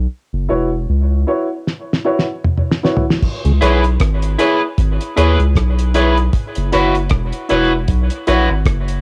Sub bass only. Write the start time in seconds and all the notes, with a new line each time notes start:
0.33 F#1
0.51 E1
0.89 C#2
3.45 C#2
3.62 B1
4.01 G#1
4.79 G#1
5.17 D#2
5.39 C#2
5.56 B1
6.57 F#1
6.74 F#1
7.11 E1
7.51 E1
7.89 B1
8.28 A#1
8.50 G#1
8.66 F#1